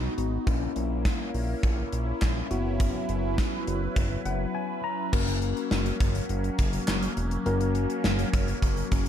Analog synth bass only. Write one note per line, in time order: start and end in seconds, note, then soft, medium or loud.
0.18 0.38 G#1 medium
0.47 0.67 A#1 loud
0.76 1.07 A#1 loud
1.34 1.55 A#1 loud
1.63 1.84 A#1 loud
1.93 2.13 A#1 loud
2.22 2.42 A#1 loud
2.51 2.92 F#1 loud
3.09 3.40 F#1 loud
3.67 3.88 F#1 loud
3.96 4.17 F#1 loud
4.26 4.46 F#1 loud
5.13 5.54 F#1 loud
5.71 5.92 F#1 loud
6.00 6.21 F#1 loud
6.30 6.50 F#1 loud
6.59 6.79 F#1 loud
6.88 7.08 F#1 loud
7.17 7.37 E1 loud
7.46 7.87 F#1 loud
8.04 8.25 F#1 loud
8.33 8.54 F#1 loud
8.62 8.83 F#1 loud
8.92 9.09 F#1 loud